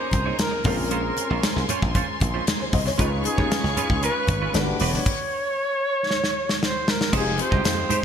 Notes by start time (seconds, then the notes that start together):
Already playing: C#4 D#4 F4 G#4 A#4 C5 D#5 G#5 A#5
0.00 muted clean electric guitar stroke
0.11 C2, muted clean electric guitar stroke, kick, closed hi-hat, muted conga, low conga
0.26 A#3 D#4 G#4 C#5
0.39 A#4, muted clean electric guitar stroke, snare, closed hi-hat, high conga
0.51 muted clean electric guitar stroke
0.64 A#1 G#3 C4 C#4 F4 G#4 A#4 C5 C6, kick, open hi-hat, high conga
0.79 muted clean electric guitar stroke, high conga
0.91 G#3 C#4 F4 C5, closed hi-hat
1.04 muted clean electric guitar stroke
1.17 muted clean electric guitar stroke, closed hi-hat, muted conga
1.30 A#1 G#3 C#4 F4 C5
1.43 snare, closed hi-hat, high conga
1.56 C2, muted clean electric guitar stroke, snare
1.69 G#3 C#4 F4 C5, closed hi-hat, low conga
1.82 A#1, muted clean electric guitar stroke, kick
1.94 G#3 C#4 F4 C5, kick, closed hi-hat, low conga
2.08 muted clean electric guitar stroke
2.20 A#1, muted clean electric guitar stroke, kick, closed hi-hat, muted conga
2.34 G#3 C#4 F4 C5
2.47 snare, closed hi-hat, high conga
2.60 C5, muted clean electric guitar stroke
2.73 C2 D#5, kick, open hi-hat, high conga
2.86 C#5, muted clean electric guitar stroke, snare, high conga
2.98 C#2 G#3 C#4 D#4 F4 G#4 B4 F5 C#6, kick, closed hi-hat
3.12 muted clean electric guitar stroke
3.24 G#4, muted clean electric guitar stroke, closed hi-hat, muted conga
3.38 D#2 G#3 C#4 F4 C#5, kick
3.51 snare, closed hi-hat, high conga
3.64 C#2, muted clean electric guitar stroke, snare
3.77 G#3 C#4 F4 B4, closed hi-hat, low conga
3.90 C#2, muted clean electric guitar stroke, kick
4.02 G#3 C#4 F4 B4, closed hi-hat
4.16 muted clean electric guitar stroke
4.27 G#1, muted clean electric guitar stroke, kick, closed hi-hat, muted conga, low conga
4.42 G#3 C#4 F4 B4
4.53 G1 A3 D4 F#4 G4 B4 D5 F#5 D6, muted clean electric guitar stroke, snare, closed hi-hat, high conga
4.68 muted clean electric guitar stroke
4.79 E1 G3 D4 F#4 B4 C#5, open hi-hat, high conga
4.94 muted clean electric guitar stroke, snare, high conga
5.06 kick, crash
6.11 snare
6.24 snare
6.49 snare
6.63 C5, snare
6.88 A#4, snare
7.01 snare
7.12 F1 G#3 C4 D#4 F4 G4 G#4 C5 F5 G5, kick, crash
7.25 muted clean electric guitar stroke
7.38 C5, muted clean electric guitar stroke, closed hi-hat, muted conga
7.51 C2 G#3 D#4 G4 D#5, kick
7.64 F2, snare, closed hi-hat, high conga
7.77 muted clean electric guitar stroke
7.89 G#3 D#4 G4 C5, closed hi-hat, low conga